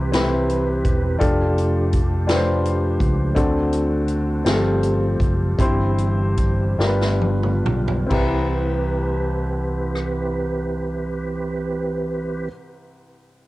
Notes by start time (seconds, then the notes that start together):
Already playing: C2 C3 E3 C4 E4 G4 B4
0.12 C4 E4 G4 B4, snare, closed hi-hat
0.50 closed hi-hat
0.85 E1, kick, closed hi-hat
1.19 F1 F3 A3 D4 F4 G4 A4, kick, closed hi-hat
1.58 closed hi-hat
1.93 kick, closed hi-hat
2.27 D4 F4 G4 B4, snare, closed hi-hat
2.35 C5
2.65 closed hi-hat
3.00 C#2, kick, closed hi-hat
3.35 D2 D3 C4 D4 F#4 A4, kick, closed hi-hat
3.73 closed hi-hat
4.08 closed hi-hat
4.45 G1 F3 G3 C4 F4 G4 G#4, snare, closed hi-hat
4.53 A4
4.83 closed hi-hat
5.20 F#1, kick, closed hi-hat
5.58 G1 G2 E3 G3 C4 E4 G4 C5, kick, closed hi-hat
5.98 closed hi-hat
6.37 kick, closed hi-hat
6.78 G1 G2 D3 G3 B3 D4 F4 G4 A#4, snare
6.86 B4
7.01 snare
7.21 high tom
7.43 mid tom
7.65 B1, mid tom
7.88 floor tom
8.07 C2 C4 E4, kick
8.11 E3 C4 G4 B4, crash
9.95 cross-stick